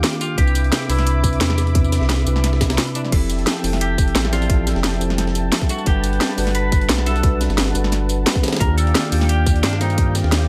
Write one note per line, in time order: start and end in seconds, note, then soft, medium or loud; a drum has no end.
0.00 0.40 D#3 loud
0.00 0.40 A#3 medium
0.00 0.38 D4 medium
0.00 0.40 F4 medium
0.00 0.40 G4 loud
0.00 0.35 F5 medium
0.00 0.35 G5 medium
0.00 3.08 D6 medium
0.00 snare loud
0.00 closed hi-hat medium
0.13 closed hi-hat soft
0.21 0.38 F4 loud
0.21 closed hi-hat medium
0.21 tambourine medium
0.36 0.71 C2 loud
0.36 0.86 C3 medium
0.36 0.87 C4 medium
0.36 0.88 D4 medium
0.36 0.88 E4 medium
0.36 0.91 G4 loud
0.36 3.10 E5 medium
0.36 3.10 B5 medium
0.36 kick loud
0.36 closed hi-hat medium
0.40 0.89 B4 medium
0.47 tambourine soft
0.55 closed hi-hat medium
0.55 tambourine medium
0.64 closed hi-hat soft
0.72 snare loud
0.72 closed hi-hat medium
0.72 closed hi-hat loud
0.89 1.40 C2 medium
0.89 1.20 C3 loud
0.89 1.22 C4 medium
0.89 1.22 D4 medium
0.89 2.74 E4 medium
0.89 1.22 E4 medium
0.89 1.23 B4 loud
0.89 closed hi-hat medium
0.89 open hi-hat medium
0.89 tambourine medium
0.99 snare soft
1.07 closed hi-hat medium
1.07 closed hi-hat loud
1.22 1.72 C3 medium
1.22 1.73 C4 medium
1.22 1.73 D4 medium
1.22 1.74 E4 medium
1.22 kick loud
1.22 closed hi-hat medium
1.22 tambourine medium
1.26 1.74 B4 medium
1.33 closed hi-hat soft
1.41 2.00 E2 medium
1.41 snare loud
1.41 closed hi-hat medium
1.41 closed hi-hat loud
1.50 snare soft
1.58 snare soft
1.58 closed hi-hat medium
1.58 tambourine medium
1.67 closed hi-hat soft
1.73 2.24 C3 medium
1.73 2.24 C4 medium
1.73 2.25 D4 medium
1.73 2.25 E4 medium
1.73 kick loud
1.73 closed hi-hat medium
1.73 closed hi-hat loud
1.78 2.26 B4 medium
1.84 tambourine soft
1.92 snare soft
1.92 closed hi-hat medium
1.92 tambourine medium
2.01 2.25 C2 loud
2.01 snare soft
2.09 snare loud
2.09 closed hi-hat medium
2.09 closed hi-hat loud
2.25 2.78 C2 medium
2.25 2.58 C3 medium
2.25 2.59 C4 medium
2.25 2.59 D4 medium
2.25 2.59 E4 medium
2.25 2.59 B4 loud
2.25 closed hi-hat medium
2.25 tambourine medium
2.36 snare soft
2.44 snare medium
2.44 closed hi-hat medium
2.44 closed hi-hat loud
2.53 snare soft
2.61 kick loud
2.61 snare loud
2.61 closed hi-hat medium
2.61 tambourine medium
2.70 snare loud
2.70 closed hi-hat medium
2.70 tambourine soft
2.78 snare loud
2.78 closed hi-hat medium
2.78 closed hi-hat loud
2.87 closed hi-hat soft
2.94 3.10 C3 medium
2.94 3.10 C4 medium
2.94 3.11 D4 medium
2.94 3.01 D4 medium
2.94 3.11 E4 medium
2.94 3.11 D5 medium
2.94 closed hi-hat medium
2.94 tambourine medium
3.05 snare soft
3.10 3.45 F1 loud
3.10 3.61 F3 medium
3.10 3.61 C4 medium
3.10 3.62 E4 medium
3.10 3.83 E4 loud
3.10 3.62 G4 medium
3.10 5.67 E5 medium
3.10 5.67 G5 medium
3.10 8.40 A5 medium
3.10 kick loud
3.10 closed hi-hat medium
3.10 closed hi-hat loud
3.10 crash loud
3.15 3.63 A4 medium
3.30 closed hi-hat medium
3.30 tambourine medium
3.39 closed hi-hat soft
3.47 snare loud
3.47 closed hi-hat medium
3.47 closed hi-hat loud
3.63 4.14 F1 medium
3.63 3.96 F3 loud
3.63 3.96 C4 medium
3.63 3.96 E4 medium
3.63 3.96 G4 medium
3.63 3.97 A4 loud
3.63 closed hi-hat medium
3.63 open hi-hat medium
3.63 tambourine medium
3.73 snare soft
3.81 4.13 G4 loud
3.81 closed hi-hat loud
3.81 closed hi-hat medium
3.98 kick loud
3.98 closed hi-hat medium
3.98 tambourine medium
4.08 closed hi-hat soft
4.15 4.74 A1 medium
4.15 snare loud
4.15 closed hi-hat loud
4.15 closed hi-hat medium
4.25 snare soft
4.25 snare medium
4.31 4.46 F3 medium
4.31 4.47 C4 medium
4.31 4.48 E4 medium
4.31 4.64 F4 medium
4.31 4.48 G4 medium
4.31 4.48 D5 loud
4.31 snare medium
4.31 closed hi-hat medium
4.31 tambourine medium
4.42 closed hi-hat soft
4.42 tambourine soft
4.47 4.98 F3 medium
4.47 4.98 C4 medium
4.47 4.99 E4 medium
4.47 5.00 G4 medium
4.47 kick loud
4.47 closed hi-hat medium
4.52 5.00 A4 medium
4.67 snare soft
4.67 closed hi-hat medium
4.67 tambourine medium
4.76 5.00 F1 loud
4.76 snare soft
4.84 snare loud
4.84 closed hi-hat medium
5.00 5.51 F1 medium
5.00 5.33 F3 loud
5.00 5.33 C4 medium
5.00 5.33 E4 medium
5.00 5.34 G4 medium
5.00 5.34 A4 loud
5.00 closed hi-hat medium
5.00 tambourine medium
5.10 snare soft
5.18 snare medium
5.18 closed hi-hat medium
5.18 closed hi-hat loud
5.27 snare soft
5.35 closed hi-hat medium
5.35 tambourine medium
5.52 snare loud
5.52 closed hi-hat medium
5.52 closed hi-hat loud
5.62 kick loud
5.62 closed hi-hat soft
5.68 5.83 G3 medium
5.68 5.84 D4 medium
5.68 5.85 F#4 medium
5.68 5.86 F#4 medium
5.68 5.85 A4 medium
5.68 8.41 B4 medium
5.68 5.85 E5 medium
5.68 8.41 F#5 medium
5.68 closed hi-hat medium
5.68 tambourine medium
5.78 tambourine soft
5.84 6.20 G1 loud
5.84 6.35 G3 medium
5.84 6.36 D4 medium
5.84 6.55 G4 loud
5.84 6.37 A4 medium
5.84 6.36 F#5 medium
5.84 kick loud
5.84 closed hi-hat medium
5.89 6.37 B4 medium
6.04 closed hi-hat medium
6.04 tambourine medium
6.13 closed hi-hat soft
6.21 snare loud
6.21 closed hi-hat medium
6.37 6.88 G1 medium
6.37 6.70 G3 loud
6.37 6.70 D4 medium
6.37 6.70 F#4 medium
6.37 6.71 A4 medium
6.37 6.71 B4 loud
6.37 closed hi-hat medium
6.37 open hi-hat medium
6.37 tambourine medium
6.47 snare soft
6.55 6.87 B4 loud
6.55 closed hi-hat medium
6.72 kick loud
6.72 closed hi-hat medium
6.72 tambourine medium
6.81 closed hi-hat soft
6.89 7.49 B1 medium
6.89 snare loud
6.89 closed hi-hat medium
6.89 closed hi-hat loud
6.98 snare soft
7.05 7.20 G3 medium
7.05 7.21 D4 medium
7.05 7.22 F#4 medium
7.05 7.38 A4 medium
7.05 7.22 A4 medium
7.05 7.22 E5 loud
7.05 snare soft
7.05 closed hi-hat medium
7.05 tambourine medium
7.16 closed hi-hat soft
7.16 tambourine soft
7.21 7.72 G3 medium
7.21 7.73 D4 medium
7.21 7.73 F#4 medium
7.21 7.74 A4 medium
7.21 kick loud
7.21 closed hi-hat medium
7.26 7.74 B4 medium
7.41 snare soft
7.41 closed hi-hat medium
7.41 tambourine medium
7.50 7.74 G1 loud
7.50 snare soft
7.50 tambourine soft
7.58 snare loud
7.58 closed hi-hat medium
7.74 8.25 G1 medium
7.74 8.07 G3 loud
7.74 8.07 D4 medium
7.74 8.07 F#4 medium
7.74 8.08 A4 medium
7.74 8.08 B4 loud
7.74 closed hi-hat medium
7.74 tambourine medium
7.84 snare soft
7.92 snare medium
7.92 closed hi-hat medium
8.09 closed hi-hat medium
8.09 tambourine medium
8.26 snare loud
8.26 closed hi-hat medium
8.35 kick loud
8.35 closed hi-hat soft
8.42 8.57 D#3 medium
8.42 8.58 A#3 medium
8.42 8.59 D4 medium
8.42 8.59 F4 medium
8.42 8.59 C5 medium
8.42 10.48 D5 medium
8.42 10.48 F5 medium
8.42 10.48 G5 medium
8.42 snare medium
8.42 closed hi-hat medium
8.42 tambourine medium
8.48 snare medium
8.48 closed hi-hat medium
8.53 snare medium
8.53 snare soft
8.53 closed hi-hat medium
8.53 tambourine soft
8.57 9.09 D#3 medium
8.57 9.10 A#3 medium
8.57 8.77 A#4 loud
8.57 snare medium
8.57 closed hi-hat medium
8.61 8.94 D#2 loud
8.61 9.10 D4 medium
8.61 9.11 F4 medium
8.61 9.11 G4 medium
8.61 kick loud
8.61 closed hi-hat medium
8.78 9.29 A4 loud
8.78 closed hi-hat medium
8.78 tambourine medium
8.87 closed hi-hat soft
8.95 snare loud
8.95 closed hi-hat medium
9.10 9.62 D#2 medium
9.10 9.44 D#3 loud
9.10 9.44 A#3 medium
9.10 9.44 D4 medium
9.10 9.45 F4 medium
9.10 9.45 G4 loud
9.10 closed hi-hat medium
9.10 open hi-hat medium
9.10 tambourine medium
9.21 snare soft
9.29 9.65 G4 loud
9.29 closed hi-hat medium
9.46 kick loud
9.46 closed hi-hat medium
9.46 tambourine medium
9.56 closed hi-hat soft
9.63 10.23 G2 medium
9.63 9.81 D4 medium
9.63 snare loud
9.63 closed hi-hat medium
9.73 snare soft
9.79 9.94 D#3 medium
9.79 9.96 A#3 medium
9.79 9.96 D4 medium
9.79 10.13 D#4 medium
9.79 9.96 F4 medium
9.79 9.96 C5 medium
9.79 snare medium
9.79 closed hi-hat medium
9.79 tambourine medium
9.90 closed hi-hat soft
9.90 tambourine soft
9.95 10.46 D#3 medium
9.95 10.47 A#3 medium
9.95 10.47 D4 medium
9.95 10.48 F4 medium
9.95 kick loud
9.95 closed hi-hat loud
9.95 closed hi-hat medium
10.00 10.48 G4 medium
10.15 snare soft
10.15 closed hi-hat medium
10.15 tambourine medium
10.24 10.48 D#2 loud
10.24 snare soft
10.32 snare loud
10.32 closed hi-hat medium